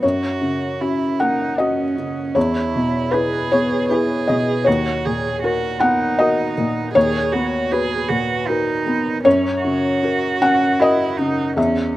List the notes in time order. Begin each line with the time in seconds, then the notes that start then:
0.02 F#2 F#4 C#5
0.41 C#3
0.81 C#4 E4 F#4
1.20 A#3 D#4 F#5
1.58 C#4 F#4 D#5
1.97 C#3
2.35 E2 E4 C#5
2.76 B2
3.11 E4 G#4 B4
3.52 B3 C#5
3.89 E4 G#4 B4
4.28 B2 D#5
4.64 D#2 F#4 C#5
5.05 A#2 G#4
5.43 F#4 A#4
5.80 B3 D#4 F#5
6.19 F#4 A#4 D#5
6.58 A#2
6.95 D#2 G#4 C#5
7.32 B3 F#4
7.72 F#4 G#4 B4
8.08 A#2 F#4
8.47 D#4 F#4 A#4
8.86 B3
9.24 F#2 C#4 C#5
9.62 C#3 F#4
10.03 F#4 A#4
10.42 C#4 F#5
10.79 E4 F#4 A#4 D#5
11.17 C#3 D#4
11.56 E2 C#4 E5